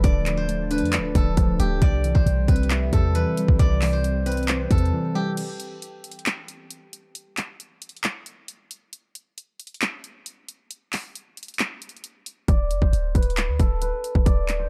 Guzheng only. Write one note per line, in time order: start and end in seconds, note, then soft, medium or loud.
0.00 0.39 G4 medium
0.00 1.15 A4 medium
0.00 0.43 B4 medium
0.00 1.82 D5 loud
0.37 0.77 C5 medium
0.71 2.21 B4 medium
1.16 2.93 A4 medium
1.60 3.95 G4 medium
1.82 3.59 D5 loud
2.15 2.55 C5 medium
2.49 3.15 B4 medium
2.93 4.70 A4 medium
3.15 3.99 B4 medium
3.59 5.44 D5 loud
3.93 4.32 C5 medium
4.26 6.31 B4 medium
4.71 6.90 A4 medium
5.15 7.51 G4 medium
12.48 14.25 D5 loud
12.82 13.21 C5 medium
13.15 13.81 B4 medium
13.59 14.69 A4 medium
13.82 14.65 B4 medium
14.26 14.69 D5 loud
14.59 14.69 C5 medium